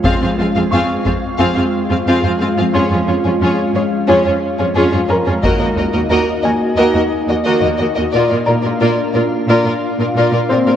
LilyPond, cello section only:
\new Staff \with { instrumentName = "Cello section" } { \clef bass \time 4/4 \key f \phrygian \tempo 4 = 89 f,16 f,16 f,16 f,16 f,16 r16 f,16 r16 f,16 f,16 r16 f,16 f,16 f,16 f,16 f,16 | f,16 f,16 f,16 f,16 f,16 r16 f,16 r16 f,16 f,16 r16 f,16 f,16 f,16 f,16 f,16 | ees,16 ees,16 ees,16 ees,16 ees,16 r16 ees,16 r16 ees,16 ees,16 r16 ees,16 ees,16 ees,16 ees,16 ees,16 | bes,16 bes,16 bes,16 bes,16 bes,16 r16 bes,16 r16 bes,16 bes,16 r16 bes,16 bes,16 bes,16 bes,16 bes,16 | }